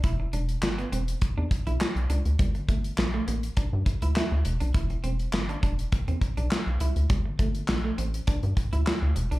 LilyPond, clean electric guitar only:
\new Staff \with { instrumentName = "Clean electric guitar" } { \time 4/4 \key g \major \tempo 4 = 102 e'16 r16 d'16 r8 b16 c'16 r8 d'16 r16 e'16 r8 d'16 r16 | g16 r16 a16 r8 a16 bes16 r16 d'16 r8 e'16 e'16 r8 d'16 | e'16 r16 c'16 r8 d'16 d'16 r8 c'16 r16 d'16 r8 e'16 r16 | g16 r16 a16 r8 a16 c'16 r16 d'16 r8 e'16 e'16 r8 d'16 | }